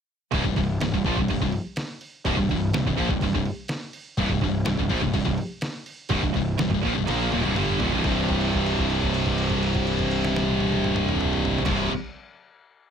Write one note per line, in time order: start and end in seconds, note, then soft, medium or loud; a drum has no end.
0.32 0.44 C1 medium
0.32 0.45 C2 medium
0.32 0.45 G2 loud
0.32 kick loud
0.32 open hi-hat medium
0.44 0.55 C1 medium
0.44 0.56 C2 medium
0.44 0.57 G2 medium
0.44 kick medium
0.56 0.79 C1 medium
0.56 0.76 C2 medium
0.56 0.77 G2 medium
0.56 kick medium
0.56 open hi-hat medium
0.80 0.92 C1 medium
0.80 0.92 C2 medium
0.80 0.92 G2 medium
0.80 snare loud
0.80 open hi-hat medium
0.92 1.04 C1 medium
0.92 1.05 C2 medium
0.92 1.05 G2 medium
0.92 kick loud
1.05 1.16 A#1 medium
1.05 1.17 A#2 loud
1.05 1.17 F3 medium
1.05 kick medium
1.05 open hi-hat medium
1.16 1.28 C1 medium
1.16 1.29 C2 medium
1.16 1.29 G2 medium
1.16 kick medium
1.28 1.40 C1 medium
1.28 1.40 C2 medium
1.28 1.41 G2 medium
1.28 kick medium
1.28 open hi-hat medium
1.40 1.52 C1 medium
1.40 1.53 C2 medium
1.40 1.54 G2 medium
1.40 kick medium
1.40 snare soft
1.52 open hi-hat medium
1.76 snare loud
1.76 open hi-hat medium
2.01 open hi-hat medium
2.25 2.36 C1 loud
2.25 2.37 C2 medium
2.25 2.37 G2 loud
2.25 kick loud
2.25 open hi-hat medium
2.37 2.49 C1 medium
2.37 2.50 C2 medium
2.37 2.50 G2 medium
2.37 kick medium
2.49 2.72 C1 medium
2.49 2.69 C2 medium
2.49 2.70 G2 medium
2.49 kick medium
2.49 open hi-hat medium
2.72 2.84 C1 medium
2.72 2.86 C2 medium
2.72 2.86 G2 medium
2.72 snare loud
2.72 open hi-hat medium
2.85 2.96 C1 medium
2.85 2.97 C2 medium
2.85 2.98 G2 medium
2.85 kick medium
2.97 3.08 A#1 medium
2.97 3.09 A#2 loud
2.97 3.09 F3 loud
2.97 kick medium
2.97 open hi-hat medium
3.09 3.20 C1 medium
3.09 3.22 C2 medium
3.09 3.22 G2 medium
3.09 kick medium
3.21 3.32 C1 medium
3.21 3.33 C2 medium
3.21 3.34 G2 medium
3.21 kick medium
3.21 open hi-hat medium
3.33 3.45 C1 medium
3.33 3.46 C2 medium
3.33 3.47 G2 medium
3.33 kick medium
3.45 open hi-hat medium
3.68 snare loud
3.68 open hi-hat medium
3.93 open hi-hat medium
4.17 4.29 C1 loud
4.17 4.29 C2 medium
4.17 4.30 G2 loud
4.17 kick loud
4.17 open hi-hat medium
4.29 4.41 C1 medium
4.29 4.43 C2 medium
4.29 4.43 G2 medium
4.29 kick medium
4.41 4.64 C1 medium
4.41 4.62 C2 medium
4.41 4.62 G2 medium
4.41 kick loud
4.41 open hi-hat medium
4.65 4.77 C1 medium
4.65 4.78 C2 medium
4.65 4.78 G2 medium
4.65 snare loud
4.65 open hi-hat medium
4.77 4.89 C1 medium
4.77 4.89 C2 medium
4.77 4.90 G2 medium
4.77 kick loud
4.89 5.01 A#1 medium
4.89 5.01 A#2 medium
4.89 5.01 F3 loud
4.89 kick medium
4.89 open hi-hat medium
5.01 5.13 C1 medium
5.01 5.12 C2 medium
5.01 5.13 G2 medium
5.01 kick medium
5.13 5.25 C1 medium
5.13 5.24 C2 medium
5.13 5.25 G2 medium
5.13 kick loud
5.13 open hi-hat medium
5.25 5.37 C1 medium
5.25 5.38 C2 medium
5.25 5.38 G2 medium
5.25 kick loud
5.38 open hi-hat medium
5.61 snare loud
5.61 open hi-hat medium
5.86 open hi-hat medium
6.09 6.21 C1 loud
6.09 6.22 C2 medium
6.09 6.22 G2 loud
6.09 kick loud
6.09 open hi-hat medium
6.22 6.33 C1 loud
6.22 6.35 C2 medium
6.22 6.35 G2 medium
6.22 kick medium
6.34 6.57 C1 medium
6.34 6.55 C2 medium
6.34 6.55 G2 medium
6.34 kick medium
6.34 open hi-hat medium
6.58 6.70 C1 medium
6.58 6.72 C2 medium
6.58 6.72 G2 medium
6.58 snare loud
6.58 open hi-hat medium
6.69 6.82 C1 medium
6.69 6.81 C2 medium
6.69 6.82 G2 medium
6.69 kick loud
6.74 6.85 C2 medium
6.74 6.85 G2 medium
6.83 6.94 A#1 medium
6.83 6.95 A#2 medium
6.83 6.96 F3 loud
6.83 kick medium
6.83 open hi-hat medium
6.93 7.07 C1 medium
6.93 7.06 C2 medium
6.98 7.08 C2 medium
6.98 7.08 G2 medium
7.07 7.31 A#1 medium
7.07 7.31 A#2 loud
7.07 7.32 F3 medium
7.07 7.32 A#3 loud
7.07 snare medium
7.07 open hi-hat medium
7.32 7.44 D#1 medium
7.32 7.44 D#2 loud
7.32 7.44 A#2 loud
7.32 open hi-hat medium
7.32 high tom medium
7.44 7.56 C1 medium
7.44 7.55 C2 medium
7.44 7.55 G2 loud
7.44 high tom medium
7.56 7.80 G1 medium
7.56 7.80 G2 loud
7.56 7.80 D3 loud
7.56 7.80 G3 loud
7.56 open hi-hat medium
7.56 mid tom loud
7.80 7.92 D#1 loud
7.80 7.92 D#2 medium
7.80 7.93 A#2 loud
7.80 floor tom loud
7.80 open hi-hat medium
7.92 8.04 C1 medium
7.92 8.02 C2 medium
7.92 8.04 G2 medium
7.92 floor tom medium
8.03 11.56 C1 loud
8.03 11.60 C2 loud
8.03 11.61 G2 medium
8.03 kick loud
8.03 crash medium
8.08 11.62 C3 loud
8.29 kick medium
8.29 crash soft
8.41 crash soft
8.53 kick medium
8.53 crash soft
8.66 crash soft
8.78 kick medium
8.78 crash soft
8.90 crash soft
9.02 kick medium
9.02 crash medium
9.14 crash medium
9.26 kick medium
9.26 crash medium
9.38 crash medium
9.50 kick medium
9.50 crash medium
9.63 crash medium
9.75 kick medium
9.75 crash medium
9.87 crash medium
9.99 kick medium
9.99 crash medium
10.11 crash medium
10.25 snare loud
10.36 snare loud
10.48 high tom medium
10.60 high tom loud
10.72 high tom loud
10.84 mid tom medium
10.96 mid tom loud
11.09 mid tom loud
11.21 mid tom loud
11.33 mid tom loud
11.45 floor tom loud
11.58 floor tom loud
11.65 11.87 C1 loud
11.65 11.88 C2 medium
11.65 11.89 G2 medium
11.65 kick loud
11.65 snare loud
11.65 crash medium
11.70 11.90 C3 loud